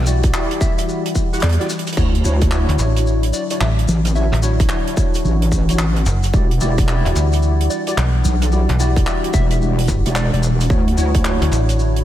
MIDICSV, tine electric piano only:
0, 0, Header, 1, 2, 480
1, 0, Start_track
1, 0, Tempo, 545455
1, 1737, Time_signature, 4, 2, 24, 8
1, 10595, End_track
2, 0, Start_track
2, 0, Title_t, "Tine electric piano"
2, 0, Program_c, 0, 4
2, 59, Note_on_c, 0, 64, 95
2, 59, Note_on_c, 0, 66, 91
2, 59, Note_on_c, 0, 67, 89
2, 59, Note_on_c, 0, 74, 105
2, 277, Note_off_c, 0, 64, 0
2, 277, Note_off_c, 0, 66, 0
2, 277, Note_off_c, 0, 67, 0
2, 277, Note_off_c, 0, 74, 0
2, 297, Note_on_c, 0, 67, 84
2, 298, Note_on_c, 0, 64, 92
2, 298, Note_on_c, 0, 66, 82
2, 298, Note_on_c, 0, 74, 95
2, 1133, Note_off_c, 0, 64, 0
2, 1133, Note_off_c, 0, 66, 0
2, 1133, Note_off_c, 0, 67, 0
2, 1133, Note_off_c, 0, 74, 0
2, 1170, Note_on_c, 0, 67, 89
2, 1171, Note_on_c, 0, 64, 94
2, 1171, Note_on_c, 0, 66, 91
2, 1171, Note_on_c, 0, 78, 108
2, 1252, Note_off_c, 0, 67, 0
2, 1253, Note_off_c, 0, 64, 0
2, 1253, Note_off_c, 0, 66, 0
2, 1253, Note_off_c, 0, 78, 0
2, 1408, Note_on_c, 0, 64, 89
2, 1408, Note_on_c, 0, 66, 83
2, 1408, Note_on_c, 0, 67, 90
2, 1408, Note_on_c, 0, 74, 99
2, 1491, Note_off_c, 0, 66, 0
2, 1491, Note_off_c, 0, 74, 0
2, 1492, Note_off_c, 0, 64, 0
2, 1492, Note_off_c, 0, 67, 0
2, 1737, Note_on_c, 0, 64, 73
2, 1738, Note_on_c, 0, 62, 84
2, 1738, Note_on_c, 0, 66, 77
2, 1738, Note_on_c, 0, 73, 90
2, 1881, Note_off_c, 0, 64, 0
2, 1881, Note_off_c, 0, 73, 0
2, 1882, Note_off_c, 0, 62, 0
2, 1882, Note_off_c, 0, 66, 0
2, 1975, Note_on_c, 0, 64, 90
2, 1975, Note_on_c, 0, 66, 84
2, 1975, Note_on_c, 0, 73, 103
2, 1976, Note_on_c, 0, 62, 95
2, 2195, Note_off_c, 0, 62, 0
2, 2195, Note_off_c, 0, 64, 0
2, 2195, Note_off_c, 0, 66, 0
2, 2195, Note_off_c, 0, 73, 0
2, 2215, Note_on_c, 0, 62, 87
2, 2215, Note_on_c, 0, 64, 82
2, 2215, Note_on_c, 0, 66, 80
2, 2215, Note_on_c, 0, 73, 96
2, 3052, Note_off_c, 0, 62, 0
2, 3052, Note_off_c, 0, 64, 0
2, 3052, Note_off_c, 0, 66, 0
2, 3052, Note_off_c, 0, 73, 0
2, 3086, Note_on_c, 0, 66, 72
2, 3087, Note_on_c, 0, 62, 79
2, 3087, Note_on_c, 0, 64, 71
2, 3088, Note_on_c, 0, 73, 89
2, 3171, Note_off_c, 0, 62, 0
2, 3171, Note_off_c, 0, 64, 0
2, 3171, Note_off_c, 0, 66, 0
2, 3171, Note_off_c, 0, 73, 0
2, 3655, Note_on_c, 0, 62, 87
2, 3655, Note_on_c, 0, 64, 79
2, 3655, Note_on_c, 0, 66, 76
2, 3655, Note_on_c, 0, 73, 94
2, 3800, Note_off_c, 0, 62, 0
2, 3800, Note_off_c, 0, 64, 0
2, 3800, Note_off_c, 0, 66, 0
2, 3800, Note_off_c, 0, 73, 0
2, 3893, Note_on_c, 0, 66, 91
2, 3894, Note_on_c, 0, 64, 87
2, 3894, Note_on_c, 0, 73, 107
2, 3895, Note_on_c, 0, 62, 92
2, 4114, Note_off_c, 0, 66, 0
2, 4114, Note_off_c, 0, 73, 0
2, 4115, Note_off_c, 0, 62, 0
2, 4115, Note_off_c, 0, 64, 0
2, 4136, Note_on_c, 0, 62, 90
2, 4136, Note_on_c, 0, 73, 97
2, 4137, Note_on_c, 0, 64, 79
2, 4137, Note_on_c, 0, 66, 81
2, 4972, Note_off_c, 0, 62, 0
2, 4972, Note_off_c, 0, 73, 0
2, 4973, Note_off_c, 0, 64, 0
2, 4973, Note_off_c, 0, 66, 0
2, 5008, Note_on_c, 0, 64, 70
2, 5008, Note_on_c, 0, 66, 73
2, 5008, Note_on_c, 0, 73, 86
2, 5009, Note_on_c, 0, 62, 77
2, 5091, Note_off_c, 0, 64, 0
2, 5091, Note_off_c, 0, 73, 0
2, 5092, Note_off_c, 0, 62, 0
2, 5092, Note_off_c, 0, 66, 0
2, 5577, Note_on_c, 0, 64, 86
2, 5577, Note_on_c, 0, 66, 77
2, 5577, Note_on_c, 0, 67, 80
2, 5577, Note_on_c, 0, 74, 95
2, 5721, Note_off_c, 0, 64, 0
2, 5721, Note_off_c, 0, 66, 0
2, 5721, Note_off_c, 0, 67, 0
2, 5721, Note_off_c, 0, 74, 0
2, 5816, Note_on_c, 0, 64, 99
2, 5816, Note_on_c, 0, 66, 89
2, 5816, Note_on_c, 0, 67, 89
2, 5816, Note_on_c, 0, 74, 110
2, 6035, Note_off_c, 0, 64, 0
2, 6035, Note_off_c, 0, 66, 0
2, 6035, Note_off_c, 0, 67, 0
2, 6035, Note_off_c, 0, 74, 0
2, 6056, Note_on_c, 0, 66, 81
2, 6057, Note_on_c, 0, 64, 94
2, 6057, Note_on_c, 0, 67, 81
2, 6057, Note_on_c, 0, 74, 98
2, 6892, Note_off_c, 0, 66, 0
2, 6893, Note_off_c, 0, 64, 0
2, 6893, Note_off_c, 0, 67, 0
2, 6893, Note_off_c, 0, 74, 0
2, 6928, Note_on_c, 0, 74, 85
2, 6929, Note_on_c, 0, 66, 69
2, 6929, Note_on_c, 0, 67, 74
2, 6930, Note_on_c, 0, 64, 83
2, 7012, Note_off_c, 0, 64, 0
2, 7012, Note_off_c, 0, 66, 0
2, 7012, Note_off_c, 0, 67, 0
2, 7012, Note_off_c, 0, 74, 0
2, 7498, Note_on_c, 0, 64, 84
2, 7498, Note_on_c, 0, 66, 78
2, 7498, Note_on_c, 0, 67, 76
2, 7498, Note_on_c, 0, 74, 97
2, 7641, Note_off_c, 0, 66, 0
2, 7641, Note_off_c, 0, 74, 0
2, 7642, Note_off_c, 0, 64, 0
2, 7642, Note_off_c, 0, 67, 0
2, 7738, Note_on_c, 0, 64, 98
2, 7738, Note_on_c, 0, 66, 91
2, 7738, Note_on_c, 0, 74, 109
2, 7739, Note_on_c, 0, 67, 88
2, 7957, Note_off_c, 0, 64, 0
2, 7957, Note_off_c, 0, 66, 0
2, 7957, Note_off_c, 0, 67, 0
2, 7957, Note_off_c, 0, 74, 0
2, 7979, Note_on_c, 0, 64, 90
2, 7979, Note_on_c, 0, 66, 77
2, 7980, Note_on_c, 0, 67, 79
2, 7980, Note_on_c, 0, 74, 97
2, 8814, Note_off_c, 0, 64, 0
2, 8814, Note_off_c, 0, 66, 0
2, 8814, Note_off_c, 0, 67, 0
2, 8814, Note_off_c, 0, 74, 0
2, 8849, Note_on_c, 0, 64, 79
2, 8850, Note_on_c, 0, 66, 73
2, 8850, Note_on_c, 0, 67, 72
2, 8850, Note_on_c, 0, 74, 84
2, 8932, Note_off_c, 0, 64, 0
2, 8932, Note_off_c, 0, 66, 0
2, 8932, Note_off_c, 0, 67, 0
2, 8932, Note_off_c, 0, 74, 0
2, 9416, Note_on_c, 0, 62, 85
2, 9416, Note_on_c, 0, 73, 91
2, 9417, Note_on_c, 0, 64, 77
2, 9417, Note_on_c, 0, 66, 79
2, 9560, Note_off_c, 0, 62, 0
2, 9561, Note_off_c, 0, 64, 0
2, 9561, Note_off_c, 0, 66, 0
2, 9561, Note_off_c, 0, 73, 0
2, 9656, Note_on_c, 0, 64, 86
2, 9657, Note_on_c, 0, 62, 97
2, 9657, Note_on_c, 0, 66, 89
2, 9657, Note_on_c, 0, 73, 108
2, 9876, Note_off_c, 0, 62, 0
2, 9876, Note_off_c, 0, 64, 0
2, 9876, Note_off_c, 0, 66, 0
2, 9876, Note_off_c, 0, 73, 0
2, 9898, Note_on_c, 0, 62, 85
2, 9898, Note_on_c, 0, 64, 84
2, 9898, Note_on_c, 0, 66, 84
2, 9898, Note_on_c, 0, 73, 93
2, 10595, Note_off_c, 0, 62, 0
2, 10595, Note_off_c, 0, 64, 0
2, 10595, Note_off_c, 0, 66, 0
2, 10595, Note_off_c, 0, 73, 0
2, 10595, End_track
0, 0, End_of_file